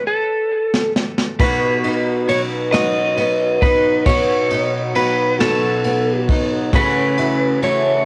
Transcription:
0.00 0.92 C#5 medium
0.07 0.92 A4 medium
0.74 snare medium
0.96 snare medium
1.18 snare medium
1.39 2.28 B2 medium
1.39 2.27 F#3 medium
1.39 2.28 B3 medium
1.39 2.29 D#4 medium
1.39 2.30 F#4 medium
1.39 2.32 B4 medium
1.39 kick loud
1.39 crash medium
1.84 3.62 D#4 medium
1.84 ride soft
2.28 2.72 F#3 medium
2.28 2.72 B3 medium
2.28 2.72 D#4 medium
2.28 2.71 F#4 medium
2.28 2.41 C#5 medium
2.28 ride medium
2.72 3.62 B2 medium
2.72 4.06 F#3 medium
2.72 3.62 B3 medium
2.72 3.62 D#4 medium
2.72 3.61 F#4 medium
2.72 3.64 D#5 medium
2.72 snare loud
2.72 ride medium
3.17 4.95 B3 medium
3.17 ride soft
3.61 4.06 B3 soft
3.61 4.06 D#4 soft
3.61 4.06 F#4 soft
3.61 4.04 B4 medium
3.61 kick medium
3.61 ride medium
4.05 4.95 B2 medium
4.05 4.94 F#3 medium
4.05 4.94 B3 medium
4.05 4.95 D#4 medium
4.05 4.97 F#4 medium
4.05 4.98 C#5 medium
4.05 kick loud
4.05 ride medium
4.50 6.28 D#4 medium
4.50 ride soft
4.94 5.39 F#3 medium
4.94 5.39 B3 medium
4.94 5.38 D#4 medium
4.94 5.38 F#4 medium
4.94 5.37 B4 medium
4.94 ride medium
5.39 6.29 B2 medium
5.39 6.72 F#3 medium
5.39 6.29 B3 medium
5.39 6.28 D#4 medium
5.39 6.27 F#4 medium
5.39 6.25 A4 medium
5.39 snare loud
5.39 ride medium
5.84 6.82 B3 medium
5.84 ride soft
6.28 6.73 B3 soft
6.28 6.73 D#4 medium
6.28 6.73 F#4 medium
6.28 kick medium
6.28 ride medium
6.72 7.61 C#3 medium
6.72 7.61 E3 medium
6.72 7.61 A3 medium
6.72 7.63 C#4 medium
6.72 7.62 F#4 medium
6.72 7.59 B4 medium
6.72 kick loud
6.72 ride medium
7.17 8.05 E4 medium
7.17 ride medium
7.61 8.05 E3 medium
7.61 8.05 A3 medium
7.61 8.05 C#4 medium
7.61 8.04 F#4 medium
7.61 8.05 C#5 medium
7.61 ride soft

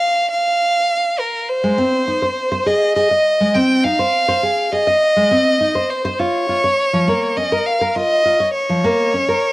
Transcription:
0.00 0.30 F5 medium
0.31 1.21 F5 loud
1.19 1.50 A#4 medium
1.48 2.68 C5 medium
1.64 1.77 G#3 medium
1.78 2.06 C4 medium
2.08 2.21 D#4 medium
2.22 2.50 C5 medium
2.52 2.65 C5 medium
2.66 2.94 G#4 medium
2.66 2.95 D#5 medium
2.95 3.09 G#4 medium
2.95 3.56 D#5 medium
3.11 3.25 D#5 medium
3.40 3.54 G#3 medium
3.54 3.83 C4 medium
3.54 3.85 G5 medium
3.84 3.98 D#4 medium
3.84 4.74 F5 loud
3.99 4.27 C5 medium
4.28 4.42 C5 medium
4.43 4.71 G#4 medium
4.72 4.86 G#4 medium
4.72 5.91 D#5 loud
4.87 5.01 D#5 medium
5.17 5.30 G#3 medium
5.31 5.59 C4 medium
5.61 5.74 D#4 medium
5.75 6.03 C5 medium
5.90 6.20 C5 medium
6.05 6.18 C5 medium
6.19 6.48 F4 medium
6.19 7.38 C#5 medium
6.49 6.62 F4 medium
6.64 6.78 C#5 medium
6.93 7.06 F3 medium
7.08 7.36 A#3 medium
7.37 7.50 C#4 medium
7.37 7.68 D#5 medium
7.52 7.80 A#4 medium
7.66 7.98 F5 medium
7.81 7.95 A#4 medium
7.96 8.24 F4 medium
7.96 8.54 D#5 medium
8.25 8.39 F4 medium
8.40 8.54 C#5 medium
8.55 9.53 C#5 medium
8.70 8.83 F3 medium
8.84 9.12 A#3 medium
9.14 9.27 C#4 medium
9.29 9.53 A#4 medium

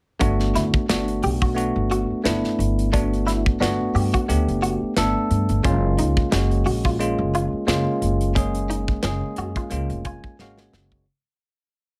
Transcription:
0.20 0.51 G1 medium
0.20 0.85 A3 medium
0.20 0.85 B3 medium
0.20 0.85 D4 medium
0.20 0.38 D4 medium
0.20 0.86 F#4 medium
0.20 kick medium
0.20 closed hi-hat medium
0.40 snare soft
0.55 0.72 D2 medium
0.55 0.73 E4 medium
0.55 snare soft
0.55 closed hi-hat medium
0.74 kick medium
0.89 1.19 G1 medium
0.89 1.54 A3 medium
0.89 1.54 B3 medium
0.89 1.07 D4 medium
0.89 1.54 D4 medium
0.89 1.54 F#4 medium
0.89 snare loud
0.89 closed hi-hat medium
1.08 closed hi-hat soft
1.23 1.70 B1 medium
1.23 1.33 G4 medium
1.23 open hi-hat medium
1.42 1.59 F#4 medium
1.42 kick medium
1.55 2.21 A3 medium
1.55 2.21 B3 medium
1.55 2.21 D4 medium
1.55 2.21 F#4 medium
1.55 closed hi-hat medium
1.76 2.06 G1 medium
1.91 2.09 F#4 medium
1.91 closed hi-hat medium
2.10 muted upright bass stroke soft
2.24 2.42 G1 medium
2.24 2.89 A3 medium
2.24 2.89 B3 medium
2.24 2.89 D4 medium
2.24 2.90 E4 medium
2.24 snare loud
2.24 closed hi-hat medium
2.44 snare soft
2.59 3.49 G1 medium
2.59 closed hi-hat medium
2.79 closed hi-hat soft
2.93 3.57 A3 medium
2.93 3.58 B3 medium
2.93 3.57 D4 medium
2.93 3.10 D4 medium
2.93 3.58 F#4 medium
2.93 kick medium
2.93 closed hi-hat medium
3.13 closed hi-hat soft
3.27 3.44 E4 medium
3.27 snare soft
3.27 closed hi-hat medium
3.46 kick medium
3.60 3.77 G1 medium
3.60 4.25 A3 medium
3.60 4.25 B3 medium
3.60 3.78 D4 medium
3.60 4.26 D4 medium
3.60 4.26 F#4 medium
3.60 snare loud
3.60 closed hi-hat medium
3.95 4.11 G2 medium
3.95 4.04 G4 medium
3.95 open hi-hat medium
4.14 4.31 F#4 medium
4.14 kick medium
4.14 closed hi-hat soft
4.28 4.45 D2 medium
4.28 4.93 A3 medium
4.28 4.93 B3 medium
4.28 4.93 D4 medium
4.28 4.93 G4 medium
4.28 closed hi-hat medium
4.48 4.78 F#1 medium
4.48 closed hi-hat soft
4.62 4.80 F#4 medium
4.62 closed hi-hat medium
4.82 muted upright bass stroke soft
4.96 5.13 G1 medium
4.96 5.61 A3 medium
4.96 5.61 B3 medium
4.96 5.61 D4 medium
4.96 5.62 A4 loud
4.96 snare medium
4.96 closed hi-hat medium
5.30 5.47 G2 medium
5.30 closed hi-hat soft
5.49 5.63 G1 medium
5.49 closed hi-hat soft
5.63 5.94 F#1 medium
5.63 6.28 G#3 medium
5.63 6.29 A#3 medium
5.63 5.82 C#4 medium
5.63 6.29 C#4 medium
5.63 6.29 F4 medium
5.63 kick loud
5.63 closed hi-hat medium
5.99 6.15 C#2 medium
5.99 6.16 D#4 medium
5.99 closed hi-hat medium
6.17 kick medium
6.31 6.62 F#1 medium
6.31 6.96 G#3 medium
6.31 6.97 A#3 medium
6.31 6.50 C#4 medium
6.31 6.97 C#4 medium
6.31 6.97 F#4 medium
6.31 snare loud
6.31 closed hi-hat medium
6.51 closed hi-hat soft
6.66 7.13 A#1 medium
6.66 6.75 F#4 medium
6.66 open hi-hat medium
6.85 7.02 F4 medium
6.85 kick medium
6.99 7.64 G#3 medium
6.99 7.64 A#3 medium
6.99 7.64 C#4 medium
6.99 7.65 F4 medium
6.99 closed hi-hat medium
7.18 7.48 F#1 medium
7.35 7.52 F4 medium
7.35 closed hi-hat medium
7.53 muted upright bass stroke soft
7.67 7.84 F#1 medium
7.67 8.32 G#3 medium
7.67 8.32 A#3 medium
7.67 8.32 C#4 medium
7.67 8.32 F4 medium
7.67 snare loud
7.67 closed hi-hat medium
8.02 8.92 F#1 medium
8.02 closed hi-hat medium
8.21 closed hi-hat soft
8.35 9.00 G#3 medium
8.35 9.00 A#3 medium
8.35 8.53 C#4 medium
8.35 9.01 C#4 medium
8.35 9.01 G#4 medium
8.35 kick loud
8.35 closed hi-hat medium
8.55 closed hi-hat soft
8.70 8.87 D#4 medium
8.70 closed hi-hat medium
8.88 kick medium
9.03 9.20 F#1 medium
9.03 9.68 G#3 medium
9.03 9.68 A#3 medium
9.03 9.21 C#4 medium
9.03 9.69 C#4 medium
9.03 9.69 G#4 medium
9.03 snare loud
9.03 closed hi-hat medium
9.36 9.54 F#2 medium
9.36 9.48 F#4 medium
9.36 closed hi-hat medium
9.56 9.74 F4 medium
9.56 kick medium
9.56 closed hi-hat soft
9.70 9.88 C#2 loud
9.70 10.35 G#3 medium
9.70 10.35 A#3 medium
9.70 10.36 C#4 medium
9.70 10.36 F4 medium
9.70 closed hi-hat medium
9.90 10.20 F1 medium
9.90 closed hi-hat soft
10.05 10.23 F4 medium
10.05 10.37 G#5 medium
10.05 kick medium
10.05 closed hi-hat medium
10.24 muted upright bass stroke soft
10.24 kick medium
10.39 10.70 G#1 medium
10.39 11.04 G#3 medium
10.39 11.04 A#3 medium
10.39 11.05 C#4 medium
10.39 11.05 F#4 medium
10.39 10.57 F5 medium
10.39 snare medium
10.58 11.05 C#5 medium
10.58 snare medium
10.73 11.04 F#1 medium
10.73 snare medium
10.92 kick medium

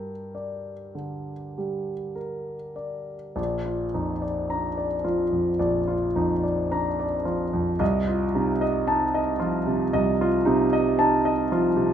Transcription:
0.00 0.92 G2 soft
0.00 0.11 G3 soft
0.00 0.72 A#4 soft
0.00 2.15 G5 medium
0.35 1.33 D5 soft
0.95 1.92 D3 soft
1.58 2.53 G3 soft
2.15 3.13 A#4 soft
2.76 3.34 D5 soft
3.36 5.57 A#1 soft
3.36 3.83 D5 soft
3.65 4.12 F4 soft
3.94 4.84 F2 soft
3.94 4.23 D#4 soft
4.22 4.67 D5 soft
4.50 5.02 D4 soft
4.50 4.95 A#5 soft
4.77 5.22 D5 soft
5.04 5.94 F3 soft
5.04 5.50 F4 soft
5.32 5.78 F2 soft
5.59 7.76 A#1 soft
5.59 6.05 D5 soft
5.88 6.33 F4 soft
6.16 7.04 F2 soft
6.16 6.44 D#4 soft
6.44 6.88 D5 soft
6.71 7.22 D4 soft
6.71 7.16 A#5 soft
7.00 7.43 D5 soft
7.25 7.80 F3 soft
7.25 7.69 F4 soft
7.53 7.81 F2 medium
7.79 9.90 C2 medium
7.79 8.24 D#5 medium
8.08 8.51 F4 soft
8.35 9.20 C3 soft
8.35 8.62 D#4 soft
8.61 9.04 D#5 medium
8.87 9.37 D#4 soft
8.87 9.30 A5 medium
9.14 9.57 D#5 medium
9.40 10.27 F3 soft
9.40 9.83 F4 medium
9.67 10.10 C3 soft
9.93 11.93 C2 medium
9.93 10.37 D#5 medium
10.21 10.64 F4 medium
10.45 11.32 C3 medium
10.45 10.73 D#4 medium
10.73 11.16 D#5 medium
10.99 11.49 D#4 medium
10.99 11.42 A5 medium
11.25 11.69 D#5 medium
11.52 11.93 F3 soft
11.52 11.93 F4 medium
11.77 11.93 C3 medium

